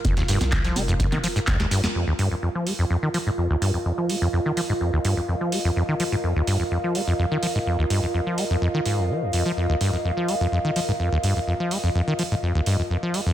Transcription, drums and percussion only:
0.05 kick, closed hi-hat, high conga, shaker
0.17 snare, closed hi-hat
0.28 snare, closed hi-hat, open hi-hat, shaker
0.41 snare, closed hi-hat, high conga, shaker
0.52 kick, snare, clap, closed hi-hat, shaker
0.65 snare, closed hi-hat
0.76 closed hi-hat, open hi-hat, high conga, shaker
0.88 closed hi-hat, shaker
1.00 kick, closed hi-hat, shaker
1.12 clap, closed hi-hat, high conga
1.24 closed hi-hat, open hi-hat, shaker
1.36 snare, closed hi-hat, shaker
1.47 kick, snare, clap, closed hi-hat, high conga, shaker
1.60 snare, closed hi-hat
1.71 snare, closed hi-hat, open hi-hat, shaker
1.84 snare, closed hi-hat, high conga, shaker
2.19 open hi-hat
2.67 open hi-hat
3.14 open hi-hat
3.62 open hi-hat
4.09 open hi-hat
4.57 open hi-hat
5.05 open hi-hat
5.52 open hi-hat
6.00 open hi-hat
6.47 open hi-hat
6.95 open hi-hat
7.43 open hi-hat
7.90 open hi-hat
8.38 open hi-hat
8.86 open hi-hat
9.33 open hi-hat
9.81 open hi-hat
10.28 open hi-hat
10.76 open hi-hat
11.23 open hi-hat
11.71 open hi-hat
12.19 open hi-hat
12.66 open hi-hat
13.14 open hi-hat

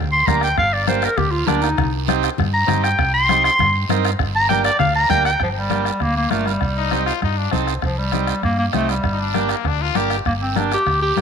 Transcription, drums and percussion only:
0.27 bombo low, bombo rim, high conga, short guiro
0.41 bombo rim, short guiro
0.58 bombo low, bombo rim, high conga, long guiro
0.88 bombo rim, high conga, short guiro
1.02 bombo rim, short guiro
1.17 bombo low, bombo rim, high conga, low conga, long guiro
1.47 bombo rim, high conga, short guiro
1.62 bombo rim, short guiro
1.77 bombo low, bombo rim, high conga, low conga, long guiro
2.08 bombo rim, high conga, short guiro
2.23 bombo rim, short guiro
2.38 bombo low, bombo rim, high conga, low conga, long guiro
2.68 bombo rim, high conga, low conga, short guiro
2.84 bombo rim, short guiro
2.99 bombo low, bombo rim, high conga, long guiro
3.29 bombo rim, high conga, short guiro
3.44 bombo rim, short guiro
3.59 bombo low, bombo rim, high conga, low conga, long guiro
3.89 bombo rim, high conga, short guiro
4.05 bombo rim, short guiro
4.19 bombo low, bombo rim, high conga, long guiro
4.49 bombo rim, high conga, short guiro
4.64 bombo rim, short guiro
4.79 bombo low, bombo rim, high conga, low conga, long guiro
5.10 bombo low, bombo rim, high conga, short guiro
5.25 bombo rim, short guiro
5.40 bombo low, bombo rim, high conga, long guiro
5.70 bombo rim, high conga, short guiro
5.85 bombo rim, short guiro
6.00 bombo low, bombo rim, high conga, long guiro
6.31 bombo rim, high conga, short guiro
6.46 bombo rim, short guiro
6.61 bombo low, bombo rim, high conga, long guiro
6.91 bombo rim, high conga, short guiro
7.06 bombo rim, short guiro
7.22 bombo low, bombo rim, high conga, long guiro
7.51 bombo low, bombo rim, high conga, short guiro
7.67 bombo rim, short guiro
7.82 bombo low, bombo rim, high conga, long guiro
8.12 bombo rim, high conga, short guiro
8.27 bombo rim, short guiro
8.43 bombo low, bombo rim, high conga, long guiro
8.73 bombo rim, high conga, short guiro
8.89 bombo rim, short guiro
9.04 bombo low, bombo rim, high conga, long guiro
9.34 bombo rim, high conga, short guiro
9.49 bombo rim, short guiro
9.65 bombo low, bombo rim, high conga, long guiro
9.95 bombo rim, high conga, short guiro
10.10 bombo rim, short guiro
10.25 bombo low, bombo rim, high conga, long guiro
10.56 bombo rim, high conga, short guiro
10.72 bombo rim, short guiro
10.86 bombo low, bombo rim, high conga, long guiro
11.17 bombo rim, high conga, short guiro

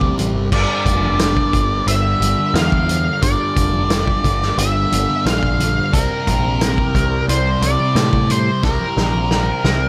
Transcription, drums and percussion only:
0.01 kick
0.18 closed hi-hat, high conga, low conga
0.52 kick, crash
0.86 kick, closed hi-hat
1.03 high conga
1.19 snare, closed hi-hat
1.37 kick
1.53 kick, closed hi-hat, low conga
1.88 closed hi-hat
2.22 closed hi-hat, high conga
2.39 low conga
2.55 snare, closed hi-hat
2.72 kick
2.89 closed hi-hat, high conga, low conga
3.22 kick, closed hi-hat
3.57 kick, closed hi-hat
3.74 high conga
3.90 snare, closed hi-hat
4.07 kick
4.24 kick, closed hi-hat, low conga
4.42 snare
4.58 closed hi-hat
4.92 closed hi-hat, high conga
5.09 low conga
5.26 snare, closed hi-hat
5.43 kick
5.60 closed hi-hat, high conga, low conga
5.94 kick, closed hi-hat
6.27 kick, closed hi-hat
6.44 high conga
6.61 snare, closed hi-hat
6.78 kick
6.95 kick, closed hi-hat, low conga
7.29 closed hi-hat
7.62 closed hi-hat, high conga
7.80 low conga
7.96 snare, closed hi-hat
8.13 kick
8.30 closed hi-hat, low conga
8.63 kick, snare
8.81 high conga
8.97 snare
9.14 high conga
9.31 snare
9.64 snare, low conga

